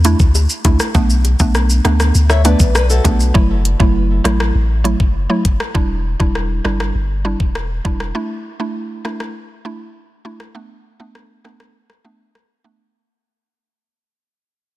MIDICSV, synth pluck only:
0, 0, Header, 1, 2, 480
1, 0, Start_track
1, 0, Key_signature, 2, "minor"
1, 0, Tempo, 600000
1, 759, Time_signature, 4, 2, 24, 8
1, 11812, End_track
2, 0, Start_track
2, 0, Title_t, "Synth pluck"
2, 0, Program_c, 0, 84
2, 38, Note_on_c, 0, 57, 76
2, 39, Note_on_c, 0, 62, 71
2, 43, Note_on_c, 0, 64, 87
2, 159, Note_off_c, 0, 57, 0
2, 159, Note_off_c, 0, 62, 0
2, 161, Note_off_c, 0, 64, 0
2, 518, Note_on_c, 0, 57, 76
2, 522, Note_on_c, 0, 62, 71
2, 523, Note_on_c, 0, 64, 82
2, 639, Note_off_c, 0, 57, 0
2, 641, Note_off_c, 0, 62, 0
2, 641, Note_off_c, 0, 64, 0
2, 757, Note_on_c, 0, 57, 90
2, 760, Note_on_c, 0, 59, 88
2, 761, Note_on_c, 0, 62, 104
2, 878, Note_off_c, 0, 57, 0
2, 880, Note_off_c, 0, 59, 0
2, 880, Note_off_c, 0, 62, 0
2, 1118, Note_on_c, 0, 57, 75
2, 1120, Note_on_c, 0, 59, 71
2, 1123, Note_on_c, 0, 62, 84
2, 1450, Note_off_c, 0, 57, 0
2, 1451, Note_off_c, 0, 59, 0
2, 1452, Note_off_c, 0, 62, 0
2, 1477, Note_on_c, 0, 57, 75
2, 1478, Note_on_c, 0, 59, 68
2, 1482, Note_on_c, 0, 62, 81
2, 1699, Note_off_c, 0, 57, 0
2, 1700, Note_off_c, 0, 59, 0
2, 1701, Note_off_c, 0, 62, 0
2, 1957, Note_on_c, 0, 57, 73
2, 1959, Note_on_c, 0, 59, 69
2, 1962, Note_on_c, 0, 62, 81
2, 2078, Note_off_c, 0, 57, 0
2, 2080, Note_off_c, 0, 59, 0
2, 2081, Note_off_c, 0, 62, 0
2, 2435, Note_on_c, 0, 57, 75
2, 2438, Note_on_c, 0, 59, 72
2, 2441, Note_on_c, 0, 62, 85
2, 2557, Note_off_c, 0, 57, 0
2, 2559, Note_off_c, 0, 59, 0
2, 2560, Note_off_c, 0, 62, 0
2, 2674, Note_on_c, 0, 54, 92
2, 2677, Note_on_c, 0, 57, 84
2, 2680, Note_on_c, 0, 64, 97
2, 2797, Note_off_c, 0, 54, 0
2, 2798, Note_off_c, 0, 57, 0
2, 2800, Note_off_c, 0, 64, 0
2, 3037, Note_on_c, 0, 54, 78
2, 3039, Note_on_c, 0, 57, 66
2, 3041, Note_on_c, 0, 64, 82
2, 3369, Note_off_c, 0, 54, 0
2, 3370, Note_off_c, 0, 57, 0
2, 3372, Note_off_c, 0, 64, 0
2, 3395, Note_on_c, 0, 54, 73
2, 3398, Note_on_c, 0, 57, 68
2, 3400, Note_on_c, 0, 64, 83
2, 3618, Note_off_c, 0, 54, 0
2, 3619, Note_off_c, 0, 57, 0
2, 3620, Note_off_c, 0, 64, 0
2, 3874, Note_on_c, 0, 54, 77
2, 3877, Note_on_c, 0, 57, 70
2, 3879, Note_on_c, 0, 64, 85
2, 3997, Note_off_c, 0, 54, 0
2, 3998, Note_off_c, 0, 57, 0
2, 3999, Note_off_c, 0, 64, 0
2, 4236, Note_on_c, 0, 54, 76
2, 4238, Note_on_c, 0, 57, 69
2, 4239, Note_on_c, 0, 64, 85
2, 4358, Note_off_c, 0, 54, 0
2, 4359, Note_off_c, 0, 57, 0
2, 4360, Note_off_c, 0, 64, 0
2, 4596, Note_on_c, 0, 55, 90
2, 4598, Note_on_c, 0, 62, 88
2, 4601, Note_on_c, 0, 64, 100
2, 4718, Note_off_c, 0, 55, 0
2, 4719, Note_off_c, 0, 62, 0
2, 4720, Note_off_c, 0, 64, 0
2, 4957, Note_on_c, 0, 55, 78
2, 4959, Note_on_c, 0, 62, 69
2, 4962, Note_on_c, 0, 64, 83
2, 5289, Note_off_c, 0, 55, 0
2, 5291, Note_off_c, 0, 62, 0
2, 5292, Note_off_c, 0, 64, 0
2, 5316, Note_on_c, 0, 55, 77
2, 5318, Note_on_c, 0, 62, 68
2, 5321, Note_on_c, 0, 64, 81
2, 5539, Note_off_c, 0, 55, 0
2, 5540, Note_off_c, 0, 62, 0
2, 5541, Note_off_c, 0, 64, 0
2, 5798, Note_on_c, 0, 55, 75
2, 5800, Note_on_c, 0, 62, 68
2, 5802, Note_on_c, 0, 64, 83
2, 5919, Note_off_c, 0, 55, 0
2, 5920, Note_off_c, 0, 62, 0
2, 5921, Note_off_c, 0, 64, 0
2, 6278, Note_on_c, 0, 55, 74
2, 6280, Note_on_c, 0, 62, 69
2, 6283, Note_on_c, 0, 64, 85
2, 6399, Note_off_c, 0, 55, 0
2, 6400, Note_off_c, 0, 62, 0
2, 6401, Note_off_c, 0, 64, 0
2, 6518, Note_on_c, 0, 57, 94
2, 6520, Note_on_c, 0, 62, 84
2, 6523, Note_on_c, 0, 64, 99
2, 6639, Note_off_c, 0, 57, 0
2, 6640, Note_off_c, 0, 62, 0
2, 6641, Note_off_c, 0, 64, 0
2, 6877, Note_on_c, 0, 57, 72
2, 6880, Note_on_c, 0, 62, 69
2, 6882, Note_on_c, 0, 64, 80
2, 7209, Note_off_c, 0, 57, 0
2, 7211, Note_off_c, 0, 62, 0
2, 7212, Note_off_c, 0, 64, 0
2, 7237, Note_on_c, 0, 57, 76
2, 7239, Note_on_c, 0, 62, 68
2, 7242, Note_on_c, 0, 64, 81
2, 7459, Note_off_c, 0, 57, 0
2, 7460, Note_off_c, 0, 62, 0
2, 7462, Note_off_c, 0, 64, 0
2, 7719, Note_on_c, 0, 57, 75
2, 7722, Note_on_c, 0, 62, 66
2, 7724, Note_on_c, 0, 64, 80
2, 7839, Note_off_c, 0, 57, 0
2, 7841, Note_off_c, 0, 62, 0
2, 7842, Note_off_c, 0, 64, 0
2, 8198, Note_on_c, 0, 57, 77
2, 8201, Note_on_c, 0, 62, 70
2, 8203, Note_on_c, 0, 64, 80
2, 8319, Note_off_c, 0, 57, 0
2, 8320, Note_off_c, 0, 62, 0
2, 8321, Note_off_c, 0, 64, 0
2, 8437, Note_on_c, 0, 57, 87
2, 8440, Note_on_c, 0, 59, 81
2, 8443, Note_on_c, 0, 62, 95
2, 8558, Note_off_c, 0, 57, 0
2, 8560, Note_off_c, 0, 59, 0
2, 8561, Note_off_c, 0, 62, 0
2, 8797, Note_on_c, 0, 57, 71
2, 8799, Note_on_c, 0, 59, 67
2, 8802, Note_on_c, 0, 62, 80
2, 9129, Note_off_c, 0, 57, 0
2, 9130, Note_off_c, 0, 59, 0
2, 9132, Note_off_c, 0, 62, 0
2, 9156, Note_on_c, 0, 57, 69
2, 9158, Note_on_c, 0, 59, 67
2, 9160, Note_on_c, 0, 62, 80
2, 9378, Note_off_c, 0, 57, 0
2, 9379, Note_off_c, 0, 59, 0
2, 9380, Note_off_c, 0, 62, 0
2, 9636, Note_on_c, 0, 57, 72
2, 9638, Note_on_c, 0, 59, 67
2, 9640, Note_on_c, 0, 62, 80
2, 9758, Note_off_c, 0, 57, 0
2, 9759, Note_off_c, 0, 59, 0
2, 9760, Note_off_c, 0, 62, 0
2, 10115, Note_on_c, 0, 57, 76
2, 10117, Note_on_c, 0, 59, 68
2, 10121, Note_on_c, 0, 62, 83
2, 10237, Note_off_c, 0, 57, 0
2, 10238, Note_off_c, 0, 59, 0
2, 10240, Note_off_c, 0, 62, 0
2, 11812, End_track
0, 0, End_of_file